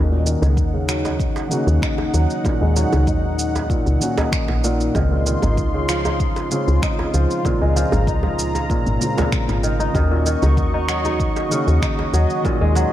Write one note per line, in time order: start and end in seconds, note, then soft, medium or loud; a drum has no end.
0.00 0.36 D#2 medium
0.00 0.16 D#3 medium
0.00 1.47 D#3 medium
0.00 1.47 A#3 medium
0.00 1.48 C#4 medium
0.00 0.42 D#4 medium
0.00 4.91 D#4 medium
0.00 1.49 F#4 medium
0.00 4.91 F#5 medium
0.11 0.31 A#2 medium
0.26 0.78 D#3 medium
0.26 shaker medium
0.42 0.59 C#2 loud
0.42 1.04 D#4 medium
0.42 djembe bass medium
0.42 shaker soft
0.57 1.30 D#2 medium
0.57 kick loud
0.57 shaker soft
0.74 1.50 C#3 medium
0.88 1.56 F#3 medium
0.88 finger snap medium
0.88 shaker medium
1.05 1.82 D#4 medium
1.05 djembe tone medium
1.05 shaker soft
1.20 kick medium
1.20 shaker soft
1.36 djembe slap soft
1.36 shaker soft
1.49 2.50 C#3 medium
1.49 2.40 D#3 medium
1.49 2.41 A#3 medium
1.49 2.42 C#4 medium
1.49 2.42 F#4 medium
1.49 shaker medium
1.67 1.79 D#2 loud
1.67 shaker soft
1.82 3.07 D#4 medium
1.82 finger snap medium
1.82 kick loud
1.82 shaker soft
1.98 djembe tone medium
2.14 2.26 D#2 medium
2.14 2.75 F#3 medium
2.14 shaker medium
2.30 shaker soft
2.44 3.69 A#2 medium
2.44 3.97 D#3 medium
2.44 3.98 A#3 medium
2.44 3.99 C#4 medium
2.44 kick loud
2.44 djembe tone medium
2.44 shaker soft
2.48 3.99 F#4 medium
2.61 2.85 D#2 medium
2.61 4.95 G#3 medium
2.76 5.00 F#3 medium
2.76 djembe slap soft
2.76 shaker medium
2.93 3.09 C#2 loud
2.93 djembe bass medium
2.93 shaker soft
3.07 3.80 D#2 medium
3.07 4.17 D#4 medium
3.07 kick loud
3.07 shaker soft
3.39 shaker medium
3.55 djembe slap soft
3.55 djembe tone medium
3.55 shaker soft
3.70 4.63 A#2 medium
3.70 kick medium
3.70 shaker soft
3.86 3.98 C#2 medium
3.86 shaker soft
3.99 4.90 D#3 medium
3.99 4.91 A#3 medium
3.99 4.92 C#4 medium
3.99 4.92 F#4 medium
3.99 djembe tone soft
3.99 shaker medium
4.18 5.43 D#4 medium
4.18 djembe slap medium
4.18 djembe bass medium
4.18 shaker soft
4.32 finger snap medium
4.32 kick loud
4.32 shaker soft
4.48 4.90 A#1 medium
4.48 djembe slap soft
4.64 5.00 A#2 medium
4.64 shaker medium
4.80 shaker soft
4.93 5.36 C#2 medium
4.93 6.47 C#3 medium
4.93 5.16 D#3 medium
4.93 6.47 G#3 medium
4.93 6.48 C4 medium
4.93 9.91 F4 medium
4.93 7.43 C6 medium
4.93 kick loud
4.93 djembe tone medium
4.93 shaker soft
4.97 6.49 F4 medium
5.11 5.31 A#2 medium
5.26 5.78 D#3 medium
5.26 shaker medium
5.42 5.59 G#1 loud
5.42 6.05 D#4 medium
5.42 djembe bass medium
5.42 shaker soft
5.57 6.30 C#2 medium
5.57 kick loud
5.57 shaker soft
5.74 6.50 C#3 medium
5.89 6.56 F3 medium
5.89 finger snap medium
5.89 shaker medium
6.05 6.82 D#4 medium
6.05 djembe tone medium
6.05 shaker soft
6.20 kick loud
6.20 shaker soft
6.36 djembe slap soft
6.36 shaker soft
6.49 7.41 C#3 medium
6.49 7.50 C#3 medium
6.49 7.41 G#3 medium
6.49 7.42 C4 medium
6.49 7.42 F4 medium
6.49 shaker medium
6.68 6.79 C#2 medium
6.68 shaker soft
6.82 8.07 D#4 medium
6.82 finger snap medium
6.82 kick loud
6.82 shaker soft
6.99 djembe tone medium
7.14 7.26 C#2 medium
7.14 7.75 F3 medium
7.14 shaker medium
7.31 shaker soft
7.43 8.69 A#2 medium
7.43 8.97 C#3 medium
7.43 8.97 G#3 medium
7.43 8.98 C4 medium
7.43 8.99 F4 medium
7.43 9.93 A#5 medium
7.43 kick loud
7.43 djembe tone medium
7.43 shaker soft
7.62 7.85 C#2 medium
7.62 9.69 G#3 medium
7.76 9.69 F3 loud
7.76 djembe slap soft
7.76 shaker medium
7.92 8.09 G#1 medium
7.92 djembe bass medium
7.92 shaker soft
8.07 8.80 C#2 medium
8.07 9.70 D#4 medium
8.07 kick loud
8.07 shaker soft
8.23 djembe bass medium
8.39 shaker medium
8.55 djembe slap soft
8.55 djembe tone medium
8.55 shaker soft
8.70 9.16 A#2 medium
8.70 kick medium
8.70 shaker soft
8.86 8.98 G#1 medium
8.86 shaker soft
8.99 9.90 C#3 medium
8.99 9.91 G#3 medium
8.99 9.92 C4 medium
8.99 9.92 F4 medium
8.99 djembe tone soft
8.99 shaker medium
9.17 9.69 A#2 medium
9.17 djembe slap medium
9.17 djembe bass medium
9.17 shaker soft
9.32 finger snap medium
9.32 kick loud
9.32 shaker soft
9.49 9.89 G#1 medium
9.49 djembe slap soft
9.49 shaker soft
9.63 9.94 D#3 medium
9.63 shaker medium
9.80 10.42 D#4 loud
9.80 shaker soft
9.93 10.36 D#2 medium
9.93 11.47 D#3 medium
9.93 10.16 D#3 medium
9.93 11.47 A#3 medium
9.93 11.48 C#4 medium
9.93 12.93 F#4 medium
9.93 11.49 F#4 medium
9.93 12.93 D#5 medium
9.93 12.42 C#6 medium
9.93 kick loud
9.93 djembe tone medium
9.93 shaker soft
10.11 10.31 A#2 medium
10.26 11.56 D#3 medium
10.26 shaker medium
10.42 10.59 C#2 loud
10.42 10.73 D#4 medium
10.42 djembe bass medium
10.42 shaker soft
10.57 11.30 D#2 medium
10.57 kick loud
10.57 shaker soft
10.74 11.05 D#4 medium
10.88 11.56 F#3 medium
10.88 finger snap medium
10.88 shaker medium
11.05 11.82 D#4 medium
11.05 djembe tone medium
11.05 shaker soft
11.20 kick medium
11.20 shaker soft
11.36 djembe slap soft
11.36 shaker soft
11.49 12.50 C#3 medium
11.49 12.41 D#3 medium
11.49 12.41 A#3 medium
11.49 12.42 C#4 medium
11.49 shaker medium
11.53 12.43 F#4 medium
11.68 11.79 D#2 medium
11.68 shaker soft
11.82 12.93 D#4 medium
11.82 finger snap medium
11.82 kick loud
11.82 shaker soft
11.99 djembe tone medium
12.13 12.26 D#2 medium
12.13 12.75 F#3 medium
12.13 shaker medium
12.30 shaker soft
12.43 12.93 A#2 medium
12.43 12.93 D#3 medium
12.43 12.93 A#3 medium
12.43 12.93 C#4 medium
12.43 12.93 F#4 medium
12.43 12.93 C6 medium
12.43 kick loud
12.43 djembe tone medium
12.43 shaker soft
12.61 12.85 D#2 medium
12.61 12.93 G#3 medium
12.75 12.93 F#3 loud
12.75 djembe slap soft
12.75 shaker medium